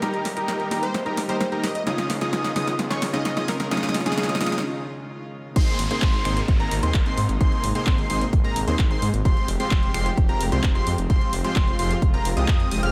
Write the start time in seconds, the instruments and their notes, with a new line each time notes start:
Already playing: string section D#3 G3 A#3 G4, grand piano A#3 D#4 G4, riser
0.00 detuned saw bass D#1, grand piano G3 A#3 D#4 G4, supersaw synth D#4 G4 A#4, analog synth lead A#5, snare, closed hi-hat
0.14 closed hi-hat
0.25 detuned saw bass D#1, snare, open hi-hat
0.37 supersaw synth D#4 G4 A#4, analog synth lead A#5, closed hi-hat
0.48 detuned saw bass D#1, snare, closed hi-hat
0.60 closed hi-hat
0.70 detuned saw bass D#1, grand piano G3 A#3 D#4 G4, supersaw synth D#4 G4 A#4, analog synth lead A#5, snare, open hi-hat
0.83 digital synth lead C5, closed hi-hat
0.94 detuned saw bass D#1, snare, closed hi-hat
1.06 supersaw synth D#4 G4 A#4, analog synth lead A#5, closed hi-hat
1.17 detuned saw bass D#1, snare, open hi-hat
1.28 detuned saw bass D#1, grand piano G3 A#3 D#4 G4, supersaw synth D#4 G4 A#4, digital synth lead C5, analog synth lead A#5, closed hi-hat
1.41 detuned saw bass D#1, digital synth lead C5, snare, closed hi-hat
1.52 supersaw synth D#4 G4 A#4, analog synth lead A#5, closed hi-hat
1.64 detuned saw bass D#1, digital synth lead D#5, snare, open hi-hat
1.75 detuned saw bass D#1, digital synth lead D#5, closed hi-hat
1.85 detuned saw bass C#2, grand piano C#3 G#3 C#4 D#4 F4, string section D#3 G#3 C#4 F4, supersaw synth C#4 D#4 F4 G#4 D#5, analog synth lead D#6, snare, closed hi-hat
1.98 snare, closed hi-hat
2.10 detuned saw bass C#2, snare, open hi-hat
2.21 supersaw synth C#4 D#4 F4 G#4 D#5, analog synth lead D#6, snare, closed hi-hat
2.33 detuned saw bass C#2, snare, closed hi-hat
2.44 snare, closed hi-hat
2.55 detuned saw bass C#2, grand piano C#3 G#3 C#4 D#4 F4, supersaw synth C#4 D#4 F4 G#4 D#5, analog synth lead D#6, snare, open hi-hat
2.67 snare, closed hi-hat
2.79 detuned saw bass C#2, snare, closed hi-hat
2.90 supersaw synth C#4 D#4 F4 G#4 C#5, analog synth lead C#6, snare, closed hi-hat
3.02 detuned saw bass C#2, snare, open hi-hat
3.12 detuned saw bass C#2, grand piano C#3 G#3 C#4 D#4 F4, supersaw synth C#4 D#4 F4 G#4 D#5, digital synth lead D#5, analog synth lead D#6, snare, closed hi-hat
3.25 detuned saw bass C#2, snare, closed hi-hat
3.37 supersaw synth C#4 D#4 F4 G#4 D#5, analog synth lead D#6, snare, closed hi-hat
3.48 detuned saw bass C#2, digital synth lead A#4, snare, open hi-hat
3.60 detuned saw bass C#2, digital synth lead A#4, snare, closed hi-hat
3.70 detuned saw bass C#2, grand piano C#3 G#3 C#4 D#4 F4, supersaw synth C#4 D#4 F4 G#4 D#5, analog synth lead D#6, snare, closed hi-hat
3.77 snare
3.83 snare, closed hi-hat
3.89 snare
3.94 detuned saw bass C#2, snare, open hi-hat
4.00 snare
4.06 supersaw synth C#4 D#4 F4 G#4 D#5, digital synth lead G#4, analog synth lead D#6, snare, closed hi-hat
4.12 snare
4.17 detuned saw bass C#2, digital synth lead G#4, snare, closed hi-hat
4.23 snare
4.29 snare, closed hi-hat
4.35 snare
4.40 detuned saw bass C#2, grand piano C#3 G#3 C#4 D#4 F4, supersaw synth C#4 D#4 F4 G#4 D#5, analog synth lead D#6, snare, open hi-hat
4.46 snare
4.52 snare, closed hi-hat
4.58 snare
5.56 detuned saw bass G#1, string section C3 G#3 A#3 D#4, supersaw synth A#3 C4 D#4 G#4 C5, analog synth lead C6, kick, closed hi-hat, crash, downlifter
5.68 closed hi-hat
5.79 detuned saw bass G#1, open hi-hat
5.91 supersaw synth A#3 C4 D#4 G#4 C5, analog synth lead C6, closed hi-hat
6.02 detuned saw bass G#1, kick, clap, closed hi-hat
6.14 closed hi-hat
6.25 detuned saw bass G#1, supersaw synth A#3 C4 D#4 G#4 C5, analog synth lead C6, finger snap, open hi-hat
6.37 closed hi-hat
6.48 detuned saw bass G#1, kick, closed hi-hat
6.60 supersaw synth A#3 C4 D#4 G#4 A#4, analog synth lead A#5, closed hi-hat
6.71 detuned saw bass G#1, open hi-hat
6.83 detuned saw bass D#2, supersaw synth A#3 C4 D#4 G#4 C5, analog synth lead C6, closed hi-hat
6.94 detuned saw bass G#1, kick, clap, closed hi-hat
7.06 supersaw synth A#3 C4 D#4 G#4 C5, analog synth lead C6, closed hi-hat
7.17 detuned saw bass G#2, open hi-hat
7.29 detuned saw bass G#1, closed hi-hat
7.41 detuned saw bass G#1, supersaw synth A#3 C4 D#4 G#4 C5, analog synth lead C6, kick, closed hi-hat
7.52 closed hi-hat
7.64 detuned saw bass G#1, open hi-hat
7.75 supersaw synth A#3 C4 D#4 G#4 C5, analog synth lead C6, closed hi-hat
7.87 detuned saw bass G#1, kick, clap, closed hi-hat
7.98 closed hi-hat
8.10 detuned saw bass G#1, supersaw synth A#3 C4 D#4 G#4 C5, analog synth lead C6, open hi-hat
8.21 closed hi-hat
8.33 detuned saw bass G#1, kick, closed hi-hat
8.44 supersaw synth A#3 C4 D#4 G#4 A#4, analog synth lead A#5, closed hi-hat
8.56 detuned saw bass G#1, open hi-hat
8.67 detuned saw bass D#2, supersaw synth A#3 C4 D#4 G#4 C5, analog synth lead C6, closed hi-hat
8.79 detuned saw bass G#1, kick, clap, closed hi-hat
8.90 supersaw synth A#3 C4 D#4 G#4 C5, analog synth lead C6, closed hi-hat
9.02 detuned saw bass G#2, open hi-hat
9.14 detuned saw bass G#1, closed hi-hat
9.25 detuned saw bass F1, string section F3 C4 G4, supersaw synth G#3 C4 F4 G4 C5, analog synth lead C6, kick, closed hi-hat
9.37 closed hi-hat
9.48 detuned saw bass F1, open hi-hat
9.60 supersaw synth G#3 C4 F4 G4 C5, analog synth lead C6, closed hi-hat
9.71 detuned saw bass F1, kick, clap, closed hi-hat
9.83 closed hi-hat
9.94 detuned saw bass F1, supersaw synth G#3 C4 F4 G4 C5, analog synth lead C6, finger snap, open hi-hat
10.06 closed hi-hat
10.17 detuned saw bass F1, kick, closed hi-hat
10.29 supersaw synth G#3 C4 F4 G4 A#4, analog synth lead A#5, closed hi-hat
10.41 detuned saw bass F1, open hi-hat
10.52 detuned saw bass C2, supersaw synth G#3 C4 F4 G4 C5, analog synth lead C6, closed hi-hat
10.64 detuned saw bass F1, kick, clap, closed hi-hat
10.75 supersaw synth G#3 C4 F4 G4 C5, analog synth lead C6, closed hi-hat
10.87 detuned saw bass F2, open hi-hat
10.98 detuned saw bass F1, closed hi-hat
11.10 detuned saw bass F1, supersaw synth G#3 C4 F4 G4 C5, string section F4, analog synth lead C6, kick, closed hi-hat
11.21 closed hi-hat
11.33 detuned saw bass F1, open hi-hat
11.44 supersaw synth G#3 C4 F4 G4 C5, analog synth lead C6, closed hi-hat
11.56 detuned saw bass F1, kick, clap, closed hi-hat
11.68 closed hi-hat
11.79 detuned saw bass F1, supersaw synth G#3 C4 F4 G4 C5, analog synth lead C6, open hi-hat
11.91 closed hi-hat
12.02 detuned saw bass F1, kick, closed hi-hat
12.14 supersaw synth G#3 C4 F4 G4 A#4, analog synth lead A#5, closed hi-hat
12.25 detuned saw bass F1, open hi-hat
12.37 detuned saw bass C2, supersaw synth G#3 C4 F4 G4 D#5, analog synth lead D#6, closed hi-hat
12.48 detuned saw bass F2, kick, clap, closed hi-hat
12.60 closed hi-hat
12.71 detuned saw bass F1, supersaw synth G#3 C4 F4 G4 D#5, analog synth lead D#6, open hi-hat
12.83 detuned saw bass F1, supersaw synth G#3 C4 F4 G4 F5, analog synth lead F6, closed hi-hat